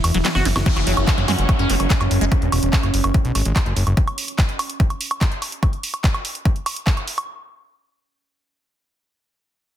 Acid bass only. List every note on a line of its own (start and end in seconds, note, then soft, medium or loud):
0.14 0.18 F#3 medium
0.25 0.29 F#3 medium
0.35 0.47 F#4 medium
0.45 0.48 E3 loud
0.66 0.68 F#3 loud
0.76 0.80 F#3 medium
0.87 0.93 F#3 medium
1.18 1.20 F#3 medium
1.28 1.32 G#3 loud
1.59 1.71 C#4 medium
1.70 1.75 F#3 medium
1.90 1.93 A3 loud
2.01 2.03 F#3 medium
2.21 2.25 G#3 loud